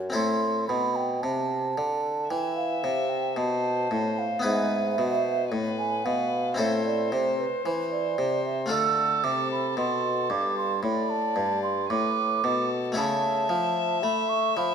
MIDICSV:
0, 0, Header, 1, 5, 480
1, 0, Start_track
1, 0, Key_signature, 0, "minor"
1, 0, Tempo, 1075269
1, 62, Time_signature, 4, 2, 24, 8
1, 2942, Tempo, 1063830
1, 6622, End_track
2, 0, Start_track
2, 0, Title_t, "Flute"
2, 0, Program_c, 0, 73
2, 66, Note_on_c, 0, 84, 70
2, 289, Note_off_c, 0, 84, 0
2, 303, Note_on_c, 0, 83, 62
2, 428, Note_on_c, 0, 79, 55
2, 435, Note_off_c, 0, 83, 0
2, 546, Note_on_c, 0, 81, 64
2, 552, Note_off_c, 0, 79, 0
2, 1028, Note_on_c, 0, 79, 61
2, 1035, Note_off_c, 0, 81, 0
2, 1142, Note_off_c, 0, 79, 0
2, 1144, Note_on_c, 0, 77, 54
2, 1382, Note_on_c, 0, 79, 54
2, 1388, Note_off_c, 0, 77, 0
2, 1499, Note_off_c, 0, 79, 0
2, 1502, Note_on_c, 0, 81, 58
2, 1869, Note_on_c, 0, 77, 52
2, 1876, Note_off_c, 0, 81, 0
2, 1984, Note_off_c, 0, 77, 0
2, 1987, Note_on_c, 0, 76, 66
2, 2454, Note_off_c, 0, 76, 0
2, 2582, Note_on_c, 0, 80, 63
2, 2701, Note_on_c, 0, 77, 57
2, 2707, Note_off_c, 0, 80, 0
2, 2938, Note_off_c, 0, 77, 0
2, 2941, Note_on_c, 0, 76, 57
2, 3059, Note_off_c, 0, 76, 0
2, 3064, Note_on_c, 0, 74, 55
2, 3181, Note_off_c, 0, 74, 0
2, 3186, Note_on_c, 0, 72, 57
2, 3299, Note_off_c, 0, 72, 0
2, 3302, Note_on_c, 0, 71, 57
2, 3418, Note_off_c, 0, 71, 0
2, 3421, Note_on_c, 0, 72, 55
2, 3448, Note_off_c, 0, 72, 0
2, 3540, Note_on_c, 0, 74, 62
2, 3775, Note_off_c, 0, 74, 0
2, 3781, Note_on_c, 0, 76, 59
2, 3898, Note_off_c, 0, 76, 0
2, 3900, Note_on_c, 0, 88, 73
2, 4137, Note_on_c, 0, 86, 59
2, 4143, Note_off_c, 0, 88, 0
2, 4258, Note_off_c, 0, 86, 0
2, 4262, Note_on_c, 0, 83, 55
2, 4378, Note_off_c, 0, 83, 0
2, 4381, Note_on_c, 0, 84, 68
2, 4617, Note_on_c, 0, 86, 62
2, 4624, Note_off_c, 0, 84, 0
2, 4738, Note_off_c, 0, 86, 0
2, 4741, Note_on_c, 0, 84, 64
2, 4854, Note_off_c, 0, 84, 0
2, 4857, Note_on_c, 0, 83, 64
2, 4977, Note_on_c, 0, 81, 65
2, 4983, Note_off_c, 0, 83, 0
2, 5214, Note_off_c, 0, 81, 0
2, 5217, Note_on_c, 0, 84, 60
2, 5339, Note_on_c, 0, 86, 58
2, 5345, Note_off_c, 0, 84, 0
2, 5695, Note_off_c, 0, 86, 0
2, 5816, Note_on_c, 0, 81, 76
2, 6280, Note_off_c, 0, 81, 0
2, 6299, Note_on_c, 0, 83, 71
2, 6417, Note_on_c, 0, 85, 72
2, 6424, Note_off_c, 0, 83, 0
2, 6539, Note_off_c, 0, 85, 0
2, 6542, Note_on_c, 0, 83, 69
2, 6622, Note_off_c, 0, 83, 0
2, 6622, End_track
3, 0, Start_track
3, 0, Title_t, "Violin"
3, 0, Program_c, 1, 40
3, 1026, Note_on_c, 1, 76, 45
3, 1506, Note_on_c, 1, 72, 47
3, 1513, Note_off_c, 1, 76, 0
3, 1982, Note_on_c, 1, 71, 48
3, 1989, Note_off_c, 1, 72, 0
3, 2228, Note_on_c, 1, 72, 46
3, 2235, Note_off_c, 1, 71, 0
3, 2461, Note_off_c, 1, 72, 0
3, 2464, Note_on_c, 1, 71, 48
3, 2933, Note_off_c, 1, 71, 0
3, 2941, Note_on_c, 1, 72, 50
3, 3896, Note_on_c, 1, 69, 54
3, 3902, Note_off_c, 1, 72, 0
3, 4857, Note_on_c, 1, 74, 48
3, 4864, Note_off_c, 1, 69, 0
3, 5336, Note_off_c, 1, 74, 0
3, 5339, Note_on_c, 1, 71, 52
3, 5583, Note_on_c, 1, 69, 46
3, 5590, Note_off_c, 1, 71, 0
3, 5814, Note_off_c, 1, 69, 0
3, 5817, Note_on_c, 1, 76, 71
3, 6622, Note_off_c, 1, 76, 0
3, 6622, End_track
4, 0, Start_track
4, 0, Title_t, "Harpsichord"
4, 0, Program_c, 2, 6
4, 0, Note_on_c, 2, 42, 50
4, 44, Note_on_c, 2, 60, 35
4, 45, Note_off_c, 2, 42, 0
4, 53, Note_on_c, 2, 64, 33
4, 58, Note_on_c, 2, 69, 37
4, 67, Note_on_c, 2, 45, 40
4, 288, Note_off_c, 2, 45, 0
4, 309, Note_on_c, 2, 47, 41
4, 531, Note_off_c, 2, 47, 0
4, 551, Note_on_c, 2, 48, 37
4, 772, Note_off_c, 2, 48, 0
4, 793, Note_on_c, 2, 50, 37
4, 1011, Note_off_c, 2, 50, 0
4, 1029, Note_on_c, 2, 52, 38
4, 1247, Note_off_c, 2, 52, 0
4, 1268, Note_on_c, 2, 48, 39
4, 1485, Note_off_c, 2, 48, 0
4, 1502, Note_on_c, 2, 47, 39
4, 1724, Note_off_c, 2, 47, 0
4, 1746, Note_on_c, 2, 45, 36
4, 1956, Note_off_c, 2, 60, 0
4, 1960, Note_off_c, 2, 64, 0
4, 1962, Note_on_c, 2, 59, 36
4, 1963, Note_off_c, 2, 69, 0
4, 1967, Note_off_c, 2, 45, 0
4, 1971, Note_on_c, 2, 64, 39
4, 1976, Note_on_c, 2, 71, 34
4, 1983, Note_on_c, 2, 44, 40
4, 2205, Note_off_c, 2, 44, 0
4, 2224, Note_on_c, 2, 47, 38
4, 2445, Note_off_c, 2, 47, 0
4, 2463, Note_on_c, 2, 45, 39
4, 2685, Note_off_c, 2, 45, 0
4, 2704, Note_on_c, 2, 47, 37
4, 2913, Note_off_c, 2, 59, 0
4, 2917, Note_off_c, 2, 64, 0
4, 2920, Note_off_c, 2, 71, 0
4, 2921, Note_on_c, 2, 60, 39
4, 2924, Note_off_c, 2, 47, 0
4, 2928, Note_on_c, 2, 64, 36
4, 2935, Note_on_c, 2, 69, 37
4, 2941, Note_on_c, 2, 45, 41
4, 3164, Note_off_c, 2, 45, 0
4, 3182, Note_on_c, 2, 48, 36
4, 3322, Note_off_c, 2, 48, 0
4, 3423, Note_on_c, 2, 52, 38
4, 3644, Note_off_c, 2, 52, 0
4, 3661, Note_on_c, 2, 48, 36
4, 3872, Note_off_c, 2, 60, 0
4, 3875, Note_off_c, 2, 64, 0
4, 3875, Note_on_c, 2, 57, 40
4, 3879, Note_off_c, 2, 69, 0
4, 3882, Note_off_c, 2, 48, 0
4, 3882, Note_on_c, 2, 65, 37
4, 3890, Note_on_c, 2, 69, 37
4, 3896, Note_on_c, 2, 50, 42
4, 4119, Note_off_c, 2, 50, 0
4, 4119, Note_off_c, 2, 57, 0
4, 4137, Note_on_c, 2, 48, 42
4, 4360, Note_off_c, 2, 48, 0
4, 4377, Note_on_c, 2, 47, 35
4, 4599, Note_off_c, 2, 47, 0
4, 4616, Note_on_c, 2, 43, 37
4, 4839, Note_off_c, 2, 43, 0
4, 4854, Note_on_c, 2, 45, 41
4, 5078, Note_off_c, 2, 45, 0
4, 5094, Note_on_c, 2, 43, 42
4, 5319, Note_off_c, 2, 43, 0
4, 5339, Note_on_c, 2, 45, 42
4, 5562, Note_off_c, 2, 45, 0
4, 5581, Note_on_c, 2, 47, 37
4, 5793, Note_off_c, 2, 65, 0
4, 5797, Note_off_c, 2, 69, 0
4, 5799, Note_on_c, 2, 57, 41
4, 5803, Note_off_c, 2, 47, 0
4, 5806, Note_on_c, 2, 64, 40
4, 5811, Note_on_c, 2, 69, 40
4, 5818, Note_on_c, 2, 49, 42
4, 6041, Note_off_c, 2, 49, 0
4, 6057, Note_on_c, 2, 53, 48
4, 6281, Note_off_c, 2, 53, 0
4, 6294, Note_off_c, 2, 57, 0
4, 6300, Note_on_c, 2, 57, 41
4, 6523, Note_off_c, 2, 57, 0
4, 6541, Note_on_c, 2, 53, 45
4, 6622, Note_off_c, 2, 53, 0
4, 6622, Note_off_c, 2, 64, 0
4, 6622, Note_off_c, 2, 69, 0
4, 6622, End_track
5, 0, Start_track
5, 0, Title_t, "Bassoon"
5, 0, Program_c, 3, 70
5, 0, Note_on_c, 3, 42, 65
5, 61, Note_off_c, 3, 42, 0
5, 64, Note_on_c, 3, 45, 54
5, 288, Note_off_c, 3, 45, 0
5, 308, Note_on_c, 3, 47, 43
5, 543, Note_off_c, 3, 47, 0
5, 549, Note_on_c, 3, 48, 46
5, 784, Note_off_c, 3, 48, 0
5, 791, Note_on_c, 3, 50, 44
5, 1023, Note_off_c, 3, 50, 0
5, 1031, Note_on_c, 3, 52, 52
5, 1268, Note_on_c, 3, 48, 46
5, 1274, Note_off_c, 3, 52, 0
5, 1506, Note_on_c, 3, 47, 48
5, 1513, Note_off_c, 3, 48, 0
5, 1744, Note_off_c, 3, 47, 0
5, 1746, Note_on_c, 3, 45, 43
5, 1915, Note_off_c, 3, 45, 0
5, 1985, Note_on_c, 3, 44, 54
5, 2219, Note_off_c, 3, 44, 0
5, 2225, Note_on_c, 3, 47, 43
5, 2464, Note_on_c, 3, 45, 44
5, 2471, Note_off_c, 3, 47, 0
5, 2700, Note_off_c, 3, 45, 0
5, 2703, Note_on_c, 3, 47, 44
5, 2937, Note_off_c, 3, 47, 0
5, 2943, Note_on_c, 3, 45, 54
5, 3183, Note_on_c, 3, 48, 50
5, 3189, Note_off_c, 3, 45, 0
5, 3338, Note_off_c, 3, 48, 0
5, 3420, Note_on_c, 3, 52, 47
5, 3644, Note_off_c, 3, 52, 0
5, 3660, Note_on_c, 3, 48, 46
5, 3899, Note_on_c, 3, 50, 55
5, 3906, Note_off_c, 3, 48, 0
5, 4138, Note_off_c, 3, 50, 0
5, 4140, Note_on_c, 3, 48, 47
5, 4375, Note_off_c, 3, 48, 0
5, 4379, Note_on_c, 3, 47, 49
5, 4614, Note_off_c, 3, 47, 0
5, 4617, Note_on_c, 3, 43, 51
5, 4853, Note_off_c, 3, 43, 0
5, 4860, Note_on_c, 3, 45, 58
5, 5095, Note_off_c, 3, 45, 0
5, 5099, Note_on_c, 3, 43, 49
5, 5335, Note_off_c, 3, 43, 0
5, 5341, Note_on_c, 3, 45, 49
5, 5576, Note_off_c, 3, 45, 0
5, 5581, Note_on_c, 3, 47, 47
5, 5816, Note_off_c, 3, 47, 0
5, 5823, Note_on_c, 3, 49, 56
5, 6057, Note_off_c, 3, 49, 0
5, 6060, Note_on_c, 3, 53, 47
5, 6302, Note_on_c, 3, 57, 51
5, 6309, Note_off_c, 3, 53, 0
5, 6544, Note_on_c, 3, 53, 47
5, 6551, Note_off_c, 3, 57, 0
5, 6622, Note_off_c, 3, 53, 0
5, 6622, End_track
0, 0, End_of_file